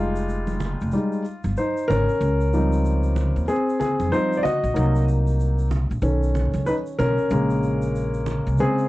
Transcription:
Already playing: F1 G3 G#3 D#4 F4
0.16 shaker
0.29 shaker
0.47 high conga, shaker
0.60 low conga, shaker
0.81 F1, shaker
0.92 G3 G#3 D#4, shaker
1.13 shaker
1.25 shaker
1.44 G1, high conga, shaker
1.57 D#4 C5, shaker
1.77 shaker
1.88 G#1 C#4 A#4, low conga, shaker
2.09 shaker
2.21 C#2, shaker
2.41 shaker
2.53 F3 G3 C4 D#4, shaker
2.73 shaker
2.85 shaker
3.03 shaker
3.16 low conga, shaker
3.36 D#2, shaker
3.48 C4 G#4, shaker
3.69 shaker
3.80 C4 G#4, low conga, shaker
4.00 F2, high conga, shaker
4.12 F3 G3 C4 D#4 C5, shaker
4.33 shaker
4.37 D5
4.43 F#4 D#5, low conga, shaker
4.63 A#1, shaker
4.74 C2 F#3 A#3 D#4, shaker
4.95 shaker
5.08 shaker
5.27 shaker
5.40 shaker
5.59 shaker
5.71 low conga, shaker
5.91 A#1, shaker
6.02 B1 D#3 C#4 A4, shaker
6.23 shaker
6.35 low conga, shaker
6.54 C#2, high conga, shaker
6.66 D#4 B4, shaker
6.86 shaker
6.98 B1 C#4 A#4, low conga, shaker
7.18 shaker
7.30 A#1 C#3 G#3 A#3, shaker
7.50 shaker
7.63 shaker
7.82 shaker
7.95 shaker
8.14 shaker
8.26 low conga, shaker
8.47 C2, shaker
8.58 C#3 G#3 C4 G#4, shaker
8.78 shaker

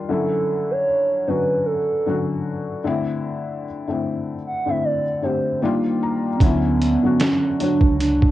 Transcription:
Already playing: D#3 G3 D4 F4
0.09 D3 F#3 C#4 E4 A4
0.71 C#5
1.27 D3 F#3 C#4 F#4 B4
1.66 A4
2.06 D3 F#3 C#4 F#4
2.84 D3 A3 C4 E4
3.87 D3 A3 C4 E4
4.47 F#5
4.66 D3 A3 C4 E4 E5
4.84 D5
5.22 D3 A3 C4 G4 C5
5.62 D#3 G3 A#3 D4 F4 D5
6.03 A#5
6.36 C#4, kick
6.40 D2 D3 F#3 B3 C#4 E4, closed hi-hat
6.82 closed hi-hat
7.03 D3 F#3 C#4 F#4
7.20 C#4, snare, closed hi-hat
7.60 D3 F#3 D4 F#4 C#5, closed hi-hat
7.81 C#2, kick
8.00 D4, closed hi-hat
8.22 kick

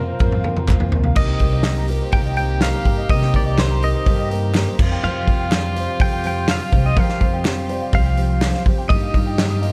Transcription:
Already playing: F1 F2 F3 A#3 C4 D#4 F4 A#4 A#5
0.00 F3
0.08 C5
0.19 F2 C3 F3 A#3 C4 F4 A#4, kick, mid tom
0.32 F5, mid tom
0.44 F3 A#3 C4 A#4, mid tom
0.57 A#5, mid tom
0.67 D2 F3 A#3 C4 F4 A#4, kick, clap, mid tom
0.80 C5, floor tom
0.92 C2 F3 A#3 C4 A#4, floor tom
1.04 F5, floor tom
1.15 C2 C3 D#3 G3 A#3 C4 D#4 G4 A#4 D#5, kick, crash
1.29 C5
1.39 C2 G3 A#3 C4 D#4 A#4, kick, open hi-hat
1.53 D#5
1.63 D#3 G3 A#3 C4 D#4 G4 A#4, snare, clap, open hi-hat
1.77 A#5
1.87 G3 A#3 C4 D#4 F4 G4 A#4, open hi-hat
2.01 C5
2.12 C2 C3 D#3 G3 A#3 C4 D#4 G4 A#4 G5, kick, open hi-hat
2.26 D#5
2.36 G3 A#3 C4 D#4 A#4 C5 G5, open hi-hat
2.50 A#5
2.61 D#3 G3 A#3 C4 D#4 G4 A#4 F5, snare, clap, open hi-hat
2.73 C5
2.85 G2 G3 A#3 C4 D#4 G4 A#4, kick, open hi-hat
2.98 D#5
3.09 C2 C3 D#3 G3 A#3 C4 D#4 G4 A#4 C5 D#5, kick, open hi-hat
3.22 C5, snare
3.34 C2 G3 A#3 C4 D#4 A#4 D5, kick, open hi-hat
3.46 D#5
3.58 D#3 G3 A#3 C4 D#4 G4 A#4 C5, snare, clap, open hi-hat
3.71 A#5
3.82 G3 A#3 C4 D#4 A#4 D#5, open hi-hat
3.95 C5
4.06 G2 C3 D#3 G3 A#3 C4 D#4 G4 A4 A#4, kick, open hi-hat
4.19 D#5
4.31 G3 A#3 C4 D#4 A#4 C5, open hi-hat
4.43 A#5
4.54 D#3 G3 A#3 C4 D#4 A#4, snare, clap, open hi-hat
4.58 C4 G4
4.68 C5
4.78 F1 F2 F3 G3 C4 F4 G4 C5, kick, crash
4.82 F3
4.91 G5
5.03 F2 C3 F3 C4 F4 G4 C5 F5
5.16 F5
5.27 F2 F3 G3 C4 G4 C5, kick, open hi-hat
5.40 G5
5.51 F3 G3 C4 G4 C5 D5, snare, clap, open hi-hat
5.64 C6
5.75 F3 G3 C4 G4 C5, open hi-hat
5.88 F5
6.00 F2 C3 F3 G3 C4 F4 G4 A4 C5 G5, kick, open hi-hat
6.13 G5
6.24 F3 G3 C4 G4 C5 G5, open hi-hat
6.37 C6
6.48 F3 G3 C4 F4 G4 C5 F5, snare, clap, open hi-hat
6.61 F5
6.72 F1 C2 F2 F3 G3 C4 G4 C5, kick, open hi-hat
6.85 D#5 G5
6.97 F2 C3 F3 G3 C4 F4 G4 A#4 C5 F5, kick, open hi-hat
7.09 F5, snare
7.21 F2 F3 G3 C4 G4 A4 C5, kick, open hi-hat
7.33 G5
7.44 F3 G3 C4 F4 G4 C5, snare, clap, open hi-hat
7.57 C6
7.69 F3 G3 C4 G4 C5 D5, open hi-hat
7.81 F5
7.93 C2 F2 C3 F3 G3 C4 F4 G4 C5 F5, kick, open hi-hat
8.06 G5
8.17 F3 G3 C4 G4 C5, open hi-hat
8.30 C6
8.41 F3 G3 C4 F4 G4 C5, snare, clap, open hi-hat
8.54 F5, snare
8.65 F2 F3 G3 C4 F4 G4 C5, kick, open hi-hat
8.78 G5
8.89 G1 G2 F3 G3 A#3 D#4 F4 G4 D#5, kick, open hi-hat
9.02 F5
9.13 G2 F3 A#3 D#4 D#5, kick, open hi-hat
9.26 G5
9.37 F3 G3 A#3 D#4 F4 G4 D#5, snare, clap, open hi-hat
9.50 D#6
9.61 F3 A#3 D#4 F4 G4 D#5, open hi-hat
9.66 A#3

